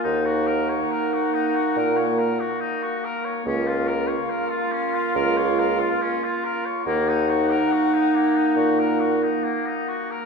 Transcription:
<<
  \new Staff \with { instrumentName = "Flute" } { \time 4/4 \key ees \dorian \tempo 4 = 70 ges''2.~ ges''8 r8 | \key bes \minor f''1 | ges''2.~ ges''8 r8 | }
  \new Staff \with { instrumentName = "Oboe" } { \time 4/4 \key ees \dorian ees'16 ges'16 bes'16 des''16 bes'16 ges'16 ees'16 ges'16 bes'16 des''16 bes'16 ges'16 ees'16 ges'16 bes'16 des''16 | \key bes \minor des'16 f'16 bes'16 des''16 bes'16 f'16 des'16 f'16 bes'16 des''16 bes'16 f'16 des'16 f'16 bes'16 des''16 | bes16 ees'16 ges'16 bes'16 ges'16 ees'16 bes16 ees'16 ges'16 bes'16 ges'16 ees'16 bes16 ees'16 ges'16 bes'16 | }
  \new Staff \with { instrumentName = "Clarinet" } { \time 4/4 \key ees \dorian ees'2.~ ees'8 r8 | \key bes \minor f'1 | ees'2.~ ees'8 r8 | }
  \new Staff \with { instrumentName = "French horn" } { \time 4/4 \key ees \dorian bes1 | \key bes \minor bes2.~ bes8 r8 | bes1 | }
  \new Staff \with { instrumentName = "Bassoon" } { \clef bass \time 4/4 \key ees \dorian ees,4 r4 bes,4 r4 | \key bes \minor des,4 r4 des,4 r4 | ees,4 r4 bes,4 r4 | }
>>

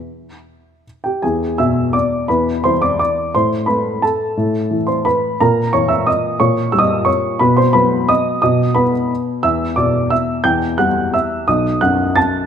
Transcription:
<<
  \new Staff \with { instrumentName = "Grand piano" } { \time 3/4 \key e \minor \tempo 4 = 174 e''2 r8 <g' g''>8 | <gis' gis''>4 <e'' e'''>4 <d'' d'''>4 | <b' b''>4 <c'' c'''>8 <d'' d'''>8 <d'' d'''>4 | <c'' c'''>4 <b' b''>4 <a' a''>4~ |
<a' a''>4. <c'' c'''>8 <b' b''>4 | <ais' ais''>4 <cis'' cis'''>8 <e'' e'''>8 <dis'' dis'''>4 | <cis'' cis'''>4 e'''16 <dis'' dis'''>8. <cis'' cis'''>4 | <b' b''>8 <c'' c'''>8 <b' b''>4 <dis'' dis'''>4 |
<dis'' dis'''>4 <b' b''>8 r4. | <e'' e'''>4 <d'' d'''>4 <e'' e'''>4 | <g'' g'''>4 <fis'' fis'''>4 <e'' e'''>4 | <dis'' dis'''>4 <fis'' fis'''>4 <a'' a'''>4 | }
  \new Staff \with { instrumentName = "Grand piano" } { \clef bass \time 3/4 \key e \minor r2. | e,4 b,2 | e,4 e2 | a,4 a2 |
a,4 e2 | ais,4 e2 | ais,4 g2 | b,4 fis2 |
b,4 b2 | e,4 b,2 | e,4 g2 | b,,4 fis,2 | }
>>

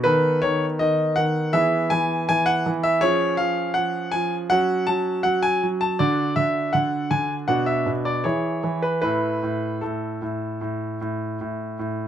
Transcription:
<<
  \new Staff \with { instrumentName = "Grand piano" } { \time 4/4 \key a \major \tempo 4 = 80 << { b'8 cis''8 dis''8 fis''8 e''8 gis''8 gis''16 fis''8 e''16 | cis''8 eis''8 fis''8 gis''8 fis''8 a''8 fis''16 gis''8 a''16 | d''8 e''8 fis''8 gis''8 fis''16 e''8 d''16 cis''8. b'16 | b'4 a'2~ a'8 r8 | } \\ { <b a'>2 <b gis'>2 | <cis' gis'>2 <cis' fis'>2 | <d' fis'>2 <d' fis'>4 <e' gis'>4 | <e' a'>1 | } >> }
  \new Staff \with { instrumentName = "Grand piano" } { \clef bass \time 4/4 \key a \major dis8 dis8 dis8 dis8 e8 e8 e8 e8 | eis8 eis8 eis8 eis8 fis8 fis8 fis8 fis8 | d8 d8 d8 d8 b,8 b,8 e8 e8 | a,8 a,8 a,8 a,8 a,8 a,8 a,8 a,8 | }
>>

